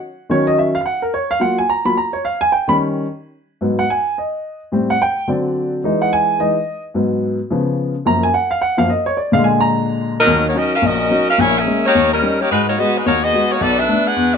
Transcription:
0.30 grand piano D#3 F#3 C#4 C#5
0.47 grand piano D#5
0.59 grand piano E5
0.75 grand piano F5
0.81 grand piano F5
0.86 grand piano F#5
1.02 grand piano A#4
1.14 grand piano C#5
1.31 grand piano F5
1.40 grand piano F#3 A#3 F4 F#5
1.58 grand piano G#5
1.69 grand piano A#5
1.85 grand piano F#3 A#3 F4 B5
1.97 grand piano A#5
2.13 grand piano C#5
2.25 grand piano F5
2.41 grand piano G#5
2.52 grand piano G5
2.68 grand piano D#3 G3 C#4 B5
3.61 grand piano G#2 F#3 B3
3.79 grand piano F#5
3.90 grand piano G#5
4.18 grand piano D#5
4.72 grand piano A2 G3 C4
4.90 grand piano F#5
5.02 grand piano G5
5.28 grand piano D3 F#3 C4 D5
5.84 grand piano E3 G#3 D#4
6.02 grand piano F#5
6.13 grand piano G#5
6.39 grand piano E3 G#3 D#4 D#5
6.94 grand piano G#2 F#3 B3
7.50 grand piano C#3 F3 B3
8.05 grand piano F#2 F3 A#3 A#5
8.23 grand piano G#5
8.34 grand piano F#5
8.51 grand piano F5
8.61 grand piano F#5
8.77 grand piano F#2 F3 A#3 F5
8.89 grand piano D#5
9.06 grand piano C#5
9.17 grand piano D5
9.32 grand piano A#2 D3 G#3 F5
9.44 grand piano G#5
9.60 grand piano A#5
10.20 saxophone section F#3 C#4 D#4 A#4
10.27 grand piano D#2 D#3
10.49 saxophone section A#3 D#4 F#4 C#5
10.54 grand piano F#3 C#4 D#4, saxophone section C#4 F#4 A#4 D#5
10.75 saxophone section C#4 F#4 A#4 F5
10.82 grand piano A#1, saxophone section C#4
10.86 saxophone section F#4 A#4 D#5
11.11 grand piano F#3 C#4 D#4
11.30 saxophone section C#4 F#4 A#4 F5
11.38 grand piano A#1, saxophone section E4 A#4 C#5 G#5
11.58 saxophone section C#4 G#4 A#4 E5
11.67 grand piano G#3 A#3 C#4
11.87 saxophone section A#3 D#4 G4 C#5
11.95 grand piano D#2
12.14 saxophone section G3 C#4 D#4 A#4
12.22 grand piano G3 C#4 D#4
12.41 saxophone section A#3 D#4 G4 C#5
12.51 grand piano G#2, saxophone section G#3 D#4 F#4 B4
12.69 saxophone section A#3 D#4 F#4 C#5
12.78 grand piano G#3 B3 F#4, saxophone section B3 F#4 G#4 D#5
12.97 saxophone section G#3 D#4 F#4 B4
13.06 grand piano D#2, saxophone section A#3 D#4 F#4 C#5
13.24 saxophone section B3 F#4 G#4 D#5
13.34 grand piano G#3 B3 F#4
13.52 saxophone section A#3 D#4 F#4 C#5
13.61 grand piano B1, saxophone section B3 F#4 A4 D5
13.79 saxophone section D4 A4 B4 E5
13.89 grand piano A3 B3 D4
14.07 saxophone section D4 G#4 B4 F#5
14.16 grand piano E2

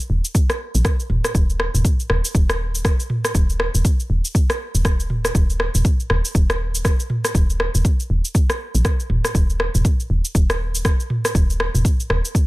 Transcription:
0.10 fm bass D#1
0.25 shaker
0.35 kick, shaker
0.50 cross-stick, shaker
0.75 fm bass A#1, shaker
0.85 kick, cross-stick, shaker
1.00 shaker
1.10 fm bass D#1, mid tom
1.25 cross-stick, shaker
1.35 fm bass D#1, kick, shaker
1.50 shaker
1.60 cross-stick
1.74 fm bass D#1, mid tom, shaker
1.85 kick, shaker
2.00 shaker
2.10 fm bass D#1, cross-stick
2.25 shaker
2.35 fm bass D#1, kick, shaker
2.50 cross-stick, shaker
2.75 shaker
2.85 kick, cross-stick, shaker
3.00 shaker
3.10 mid tom
3.25 cross-stick, shaker
3.35 fm bass D#1, kick, shaker
3.50 shaker
3.60 cross-stick
3.75 fm bass D#1, shaker
3.85 kick, shaker
4.00 shaker
4.10 fm bass D#1
4.25 shaker
4.35 kick, shaker
4.50 cross-stick, shaker
4.75 fm bass D#1, shaker
4.85 kick, cross-stick, shaker
5.00 shaker
5.10 mid tom
5.25 cross-stick, shaker
5.35 fm bass D#1, kick, shaker
5.50 shaker
5.60 cross-stick
5.75 fm bass D#1, mid tom, shaker
5.85 kick, shaker
6.00 shaker
6.10 fm bass D#1, cross-stick
6.25 shaker
6.35 fm bass D#1, kick, shaker
6.50 cross-stick, shaker
6.75 shaker
6.85 kick, cross-stick, shaker
7.00 shaker
7.10 mid tom
7.25 cross-stick, shaker
7.35 fm bass D#1, kick, shaker
7.50 shaker
7.60 cross-stick
7.75 fm bass D#1, shaker
7.85 kick, shaker
8.00 shaker
8.10 fm bass D#1
8.25 shaker
8.35 kick, shaker
8.50 cross-stick, shaker
8.75 fm bass A#1, shaker
8.85 kick, cross-stick, shaker
9.00 shaker
9.10 fm bass D#1, mid tom
9.25 cross-stick, shaker
9.35 fm bass D#1, kick, shaker
9.50 shaker
9.60 cross-stick
9.75 fm bass D#1, mid tom, shaker
9.85 kick, shaker
10.00 shaker
10.10 fm bass D#1
10.25 shaker
10.35 fm bass D#1, kick, shaker
10.50 cross-stick, shaker
10.75 shaker
10.85 kick, cross-stick, shaker
11.00 shaker
11.10 mid tom
11.25 cross-stick, shaker
11.35 fm bass D#1, kick, shaker
11.50 shaker
11.60 cross-stick
11.75 fm bass D#1, mid tom, shaker
11.85 kick, shaker
12.00 shaker
12.10 fm bass D#1, cross-stick
12.25 shaker
12.35 kick, shaker

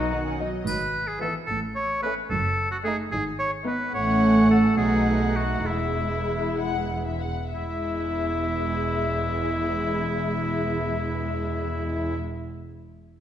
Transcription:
Already playing: double bass section B1, cello section B2, violin section D#4, oboe F#4
0.12 viola section D#3, violin section F#5
0.26 violin section C#4
0.40 viola section F#3, violin section D#4 D#5
0.67 double bass section G#1, cello section G#2, oboe B4, triangle
1.07 oboe G#4
1.21 viola section E3, violin section B3 E5, oboe A4
1.47 double bass section A1, cello section A2, oboe A4
1.75 oboe C#5
2.03 viola section A3, violin section C#4 E5, oboe B4
2.30 double bass section F#1, cello section F#2, oboe A4
2.71 oboe F#4
2.84 viola section A3, violin section D#4 D#5, oboe G#4
3.12 double bass section G#1, cello section G#2, oboe G#4
3.39 oboe C#5
3.65 viola section B3, violin section D#4 D#5, oboe B4
3.93 double bass section A1, cello section A2, viola section A3, violin section C#4 F#5, oboe C#5
4.51 oboe A4
4.77 double bass section B1, cello section B2, viola section A3, violin section D#4 F#5, oboe G#4
5.36 oboe F#4
5.66 double bass section E1, cello section E2, viola section G#3, violin section E4 E5, oboe E4
6.58 violin section F#5
7.07 violin section E5
7.21 violin section F#5
7.54 double bass section E1, cello section E2, viola section G#3, oboe E4, violin section E4 E5

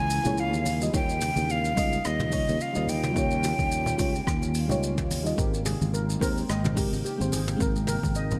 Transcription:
Already playing: fretless electric bass C#2, ambient pad C#3 E3 G#3 A#3 E4, flute G#5
0.10 open hi-hat, shaker
0.24 fretless electric bass C#2, fm electric piano A#3 E4 G#4 C#5, low conga, shaker
0.38 flute F5, shaker
0.54 fretless electric bass D#2, shaker
0.65 ambient pad D#3 G3 C#4 F4, open hi-hat, high conga, shaker
0.80 fm electric piano G3 D#4 F4 D#5, shaker
0.92 fretless electric bass D#2, fm electric piano G3 D#4 F4 C#5, flute G5, kick, shaker
1.09 shaker
1.21 mid tom, open hi-hat, shaker
1.36 fretless electric bass D#2, high conga, shaker
1.50 flute F5, shaker
1.65 shaker
1.75 fretless electric bass C#2, fm electric piano G3 D#4 F4 D#5, kick, open hi-hat, shaker
1.93 shaker
2.05 fretless electric bass D#2, flute D#5, cross-stick, shaker
2.20 mid tom, high conga, low conga, shaker
2.30 fm electric piano G3 D#4 F4 C#5, kick, open hi-hat, shaker
2.49 fretless electric bass D#2, shaker
2.61 flute F5, shaker
2.73 fretless electric bass D#2, fm electric piano G3 D#4 F4 D#5, shaker
2.87 flute G5, open hi-hat, high conga, shaker
3.03 mid tom, shaker
3.11 fm electric piano G3 D#4
3.16 fretless electric bass D#2, fm electric piano F4 C#5, kick, shaker
3.31 shaker
3.44 mid tom, open hi-hat, shaker
3.59 fretless electric bass D#2, kick, high bongo, high conga, shaker
3.72 shaker
3.86 low conga, shaker
3.97 fretless electric bass C#2, fm electric piano G3 D#4 F4 C#5, kick, open hi-hat, high bongo, shaker
4.15 shaker
4.27 fretless electric bass D#2, kick, cross-stick, shaker
4.42 high conga, shaker
4.55 open hi-hat, shaker
4.68 fretless electric bass C#2, fm electric piano G3 D#4 F4 C#5, low conga, shaker
4.83 shaker
4.98 fretless electric bass D#2, kick, mid tom, shaker
5.11 open hi-hat, high conga, shaker
5.23 fm electric piano G3 D#4 F4 D#5, shaker
5.36 fretless electric bass G#1, fm electric piano G#3 C4 G4 A#4, ambient pad G#3 C4 G5, steel pan G4, kick, shaker
5.54 shaker
5.66 steel pan G#4, mid tom, open hi-hat, shaker
5.82 fretless electric bass G#1, high conga, shaker
5.94 steel pan A#4, shaker
6.10 shaker
6.19 fretless electric bass D#2, fm electric piano G#3 C4 C5 G5, steel pan A#4, kick, open hi-hat, shaker
6.37 shaker
6.49 fretless electric bass G#1, steel pan D#5, cross-stick, shaker
6.65 mid tom, high conga, low conga, shaker
6.75 fm electric piano G#3 C4 G4 A#4, steel pan G4, kick, open hi-hat, shaker
6.93 fretless electric bass G#1, shaker
7.05 steel pan G4, shaker
7.18 fretless electric bass G#1, fm electric piano G#3 C4 G4 C5, shaker
7.32 steel pan G#4, open hi-hat, high conga, shaker
7.48 mid tom, shaker
7.56 fm electric piano G#3 C4, steel pan A#4, kick
7.60 fretless electric bass G#1, fm electric piano A#4 G5, shaker
7.76 shaker
7.87 steel pan A#4, mid tom, open hi-hat, shaker
8.03 fretless electric bass G#1, kick, high bongo, high conga, shaker
8.15 steel pan D#5, shaker
8.31 low conga, shaker

